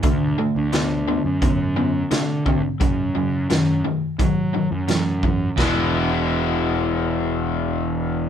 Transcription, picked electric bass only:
\new Staff \with { instrumentName = "Picked electric bass" } { \clef bass \time 4/4 \key e \mixolydian \tempo 4 = 87 d,8 r16 d,4 fis,4~ fis,16 d8 d,16 r16 | fis,8 fis,8 fis,8 r8 fis8. fis,4~ fis,16 | e,,1 | }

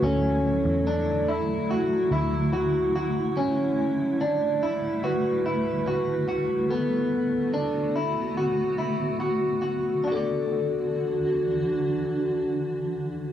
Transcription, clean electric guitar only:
\new Staff \with { instrumentName = "Clean electric guitar" } { \time 4/4 \key d \major \tempo 4 = 72 cis'4 d'8 e'8 fis'8 e'8 fis'8 fis'8 | cis'4 d'8 e'8 fis'8 e'8 fis'8 fis'8 | b4 d'8 e'8 fis'8 e'8 fis'8 fis'8 | <d' fis' a' d''>1 | }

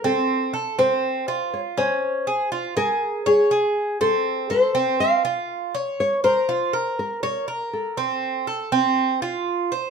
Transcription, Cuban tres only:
\new Staff \with { instrumentName = "Cuban tres" } { \time 4/4 \key bes \minor \tempo 4 = 121 c'4 a'8 c'4 f'4 des'8~ | des'8 aes'8 f'8 aes'4 des''8 aes'4 | c'4 a'8 c'4 f'4 des''8~ | des''8 bes'8 f'8 bes'4 des''8 bes'4 |
c'4 a'8 c'4 f'4 c''8 | }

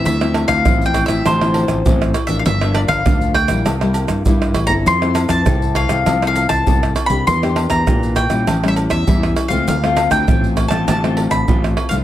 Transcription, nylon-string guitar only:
\new Staff \with { instrumentName = "Nylon-string guitar" } { \time 4/4 \key d \dorian \tempo 4 = 100 << { <f c' e'>16 <f c' e'>8. <f c' e'>8. <f c' e'>8 <f c' e'>8. <f c' e'>8 r16 <f bes d'>16~ | <f bes d'>16 <f bes d'>8. <f bes d'>8 r16 <g bes e'>8 <g bes e'>8. <g bes e'>8. <c' e' a'>16~ | <c' e' a'>16 <c' e' a'>8. <c' e' a'>8. <c' e' a'>8 <c' e' a'>8. <c' e' a'>8. <bes d' g'>16~ | <bes d' g'>16 <bes d' g'>8. <bes d' g'>8 r16 <g cis' e'>8 <g cis' e'>8. <g cis' e'>8. <a c' f'>16~ |
<a c' f'>16 <a c' f'>8. <a c' f'>8. <a c' f'>8 <a c' f'>8. <a c' f'>8. <f a d'>16 | } \\ { d4 a,4 d4 a,4 | g,4 d4 c4 g,4 | f4 c4 f4 c4 | e4 e4 a,4 e4 |
d4 a,4 d4 a,4 | } >> }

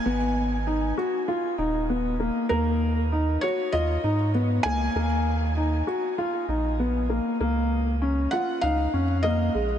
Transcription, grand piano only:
\new Staff \with { instrumentName = "Grand piano" } { \time 4/4 \key dis \minor \tempo 4 = 98 b4 dis'8 fis'8 eis'8 dis'8 b8 ais8 | ais4 dis'8 fis'8 eis'8 dis'8 b8 ais8 | ais4 dis'8 fis'8 eis'8 dis'8 b8 ais8 | ais4 cis'8 eis'8 dis'8 cis'8 ais8 gis8 | }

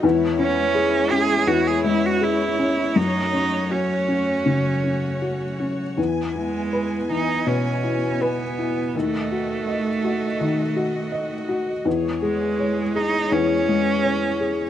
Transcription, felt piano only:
\new Staff \with { instrumentName = "Felt piano" } { \time 4/4 \key cis \minor \tempo 4 = 82 e,8 cis'8 gis'8 cis'8 e,8 gis8 gis'8 cis'8 | fis,8 cis'8 fis'8 cis'8 cis8 cis'8 fis'8 cis'8 | e,8 e'8 b'8 e8 b,8 e'8 b'8 e'8 | dis,8 fis'8 dis''8 fis'8 dis8 fis'8 dis''8 fis'8 |
e,8 gis'8 cis''8 gis'8 e,8 gis8 cis''8 gis'8 | }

